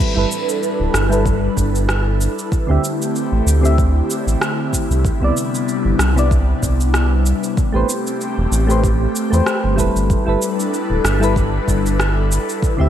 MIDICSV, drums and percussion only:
0, 0, Header, 1, 2, 480
1, 0, Start_track
1, 0, Key_signature, 1, "major"
1, 0, Tempo, 631579
1, 1914, Time_signature, 4, 2, 24, 8
1, 9796, End_track
2, 0, Start_track
2, 0, Title_t, "Drums"
2, 2, Note_on_c, 9, 69, 29
2, 78, Note_off_c, 9, 69, 0
2, 240, Note_on_c, 9, 69, 74
2, 316, Note_off_c, 9, 69, 0
2, 374, Note_on_c, 9, 69, 41
2, 450, Note_off_c, 9, 69, 0
2, 479, Note_on_c, 9, 69, 26
2, 555, Note_off_c, 9, 69, 0
2, 715, Note_on_c, 9, 37, 75
2, 721, Note_on_c, 9, 69, 76
2, 791, Note_off_c, 9, 37, 0
2, 797, Note_off_c, 9, 69, 0
2, 854, Note_on_c, 9, 69, 41
2, 930, Note_off_c, 9, 69, 0
2, 954, Note_on_c, 9, 36, 109
2, 960, Note_on_c, 9, 69, 30
2, 1030, Note_off_c, 9, 36, 0
2, 1036, Note_off_c, 9, 69, 0
2, 1194, Note_on_c, 9, 36, 54
2, 1199, Note_on_c, 9, 69, 70
2, 1270, Note_off_c, 9, 36, 0
2, 1275, Note_off_c, 9, 69, 0
2, 1334, Note_on_c, 9, 69, 40
2, 1410, Note_off_c, 9, 69, 0
2, 1434, Note_on_c, 9, 37, 77
2, 1440, Note_on_c, 9, 69, 30
2, 1510, Note_off_c, 9, 37, 0
2, 1516, Note_off_c, 9, 69, 0
2, 1681, Note_on_c, 9, 69, 71
2, 1757, Note_off_c, 9, 69, 0
2, 1815, Note_on_c, 9, 69, 40
2, 1891, Note_off_c, 9, 69, 0
2, 1915, Note_on_c, 9, 36, 110
2, 1920, Note_on_c, 9, 69, 31
2, 1991, Note_off_c, 9, 36, 0
2, 1996, Note_off_c, 9, 69, 0
2, 2161, Note_on_c, 9, 69, 77
2, 2237, Note_off_c, 9, 69, 0
2, 2296, Note_on_c, 9, 69, 43
2, 2372, Note_off_c, 9, 69, 0
2, 2400, Note_on_c, 9, 69, 30
2, 2476, Note_off_c, 9, 69, 0
2, 2642, Note_on_c, 9, 69, 77
2, 2718, Note_off_c, 9, 69, 0
2, 2775, Note_on_c, 9, 69, 42
2, 2851, Note_off_c, 9, 69, 0
2, 2875, Note_on_c, 9, 36, 109
2, 2881, Note_on_c, 9, 69, 30
2, 2951, Note_off_c, 9, 36, 0
2, 2957, Note_off_c, 9, 69, 0
2, 3120, Note_on_c, 9, 69, 70
2, 3196, Note_off_c, 9, 69, 0
2, 3254, Note_on_c, 9, 69, 38
2, 3330, Note_off_c, 9, 69, 0
2, 3355, Note_on_c, 9, 37, 75
2, 3361, Note_on_c, 9, 69, 33
2, 3431, Note_off_c, 9, 37, 0
2, 3437, Note_off_c, 9, 69, 0
2, 3595, Note_on_c, 9, 36, 58
2, 3602, Note_on_c, 9, 69, 80
2, 3671, Note_off_c, 9, 36, 0
2, 3678, Note_off_c, 9, 69, 0
2, 3734, Note_on_c, 9, 69, 43
2, 3810, Note_off_c, 9, 69, 0
2, 3835, Note_on_c, 9, 36, 115
2, 3842, Note_on_c, 9, 69, 30
2, 3911, Note_off_c, 9, 36, 0
2, 3918, Note_off_c, 9, 69, 0
2, 4082, Note_on_c, 9, 69, 81
2, 4158, Note_off_c, 9, 69, 0
2, 4216, Note_on_c, 9, 69, 46
2, 4292, Note_off_c, 9, 69, 0
2, 4321, Note_on_c, 9, 69, 30
2, 4397, Note_off_c, 9, 69, 0
2, 4554, Note_on_c, 9, 37, 78
2, 4561, Note_on_c, 9, 69, 82
2, 4630, Note_off_c, 9, 37, 0
2, 4637, Note_off_c, 9, 69, 0
2, 4696, Note_on_c, 9, 69, 43
2, 4772, Note_off_c, 9, 69, 0
2, 4796, Note_on_c, 9, 36, 114
2, 4801, Note_on_c, 9, 69, 33
2, 4872, Note_off_c, 9, 36, 0
2, 4877, Note_off_c, 9, 69, 0
2, 5036, Note_on_c, 9, 36, 62
2, 5041, Note_on_c, 9, 69, 75
2, 5112, Note_off_c, 9, 36, 0
2, 5117, Note_off_c, 9, 69, 0
2, 5173, Note_on_c, 9, 69, 42
2, 5249, Note_off_c, 9, 69, 0
2, 5274, Note_on_c, 9, 37, 73
2, 5280, Note_on_c, 9, 69, 31
2, 5350, Note_off_c, 9, 37, 0
2, 5356, Note_off_c, 9, 69, 0
2, 5518, Note_on_c, 9, 69, 74
2, 5594, Note_off_c, 9, 69, 0
2, 5652, Note_on_c, 9, 69, 41
2, 5728, Note_off_c, 9, 69, 0
2, 5756, Note_on_c, 9, 36, 121
2, 5760, Note_on_c, 9, 69, 30
2, 5832, Note_off_c, 9, 36, 0
2, 5836, Note_off_c, 9, 69, 0
2, 5999, Note_on_c, 9, 69, 76
2, 6075, Note_off_c, 9, 69, 0
2, 6134, Note_on_c, 9, 69, 43
2, 6210, Note_off_c, 9, 69, 0
2, 6241, Note_on_c, 9, 69, 31
2, 6317, Note_off_c, 9, 69, 0
2, 6480, Note_on_c, 9, 69, 77
2, 6556, Note_off_c, 9, 69, 0
2, 6613, Note_on_c, 9, 69, 44
2, 6689, Note_off_c, 9, 69, 0
2, 6715, Note_on_c, 9, 36, 110
2, 6722, Note_on_c, 9, 69, 33
2, 6791, Note_off_c, 9, 36, 0
2, 6798, Note_off_c, 9, 69, 0
2, 6960, Note_on_c, 9, 69, 72
2, 7036, Note_off_c, 9, 69, 0
2, 7093, Note_on_c, 9, 69, 39
2, 7169, Note_off_c, 9, 69, 0
2, 7193, Note_on_c, 9, 37, 68
2, 7199, Note_on_c, 9, 69, 29
2, 7269, Note_off_c, 9, 37, 0
2, 7275, Note_off_c, 9, 69, 0
2, 7435, Note_on_c, 9, 36, 60
2, 7439, Note_on_c, 9, 69, 80
2, 7511, Note_off_c, 9, 36, 0
2, 7515, Note_off_c, 9, 69, 0
2, 7573, Note_on_c, 9, 69, 41
2, 7649, Note_off_c, 9, 69, 0
2, 7676, Note_on_c, 9, 36, 109
2, 7679, Note_on_c, 9, 69, 29
2, 7752, Note_off_c, 9, 36, 0
2, 7755, Note_off_c, 9, 69, 0
2, 7920, Note_on_c, 9, 69, 72
2, 7996, Note_off_c, 9, 69, 0
2, 8056, Note_on_c, 9, 69, 39
2, 8132, Note_off_c, 9, 69, 0
2, 8162, Note_on_c, 9, 69, 29
2, 8238, Note_off_c, 9, 69, 0
2, 8395, Note_on_c, 9, 37, 71
2, 8401, Note_on_c, 9, 69, 70
2, 8471, Note_off_c, 9, 37, 0
2, 8477, Note_off_c, 9, 69, 0
2, 8535, Note_on_c, 9, 69, 42
2, 8611, Note_off_c, 9, 69, 0
2, 8635, Note_on_c, 9, 36, 112
2, 8642, Note_on_c, 9, 69, 30
2, 8711, Note_off_c, 9, 36, 0
2, 8718, Note_off_c, 9, 69, 0
2, 8875, Note_on_c, 9, 36, 60
2, 8882, Note_on_c, 9, 69, 73
2, 8951, Note_off_c, 9, 36, 0
2, 8958, Note_off_c, 9, 69, 0
2, 9016, Note_on_c, 9, 69, 43
2, 9092, Note_off_c, 9, 69, 0
2, 9117, Note_on_c, 9, 37, 69
2, 9123, Note_on_c, 9, 69, 30
2, 9193, Note_off_c, 9, 37, 0
2, 9199, Note_off_c, 9, 69, 0
2, 9363, Note_on_c, 9, 69, 72
2, 9439, Note_off_c, 9, 69, 0
2, 9496, Note_on_c, 9, 69, 42
2, 9572, Note_off_c, 9, 69, 0
2, 9595, Note_on_c, 9, 36, 107
2, 9604, Note_on_c, 9, 69, 28
2, 9671, Note_off_c, 9, 36, 0
2, 9680, Note_off_c, 9, 69, 0
2, 9796, End_track
0, 0, End_of_file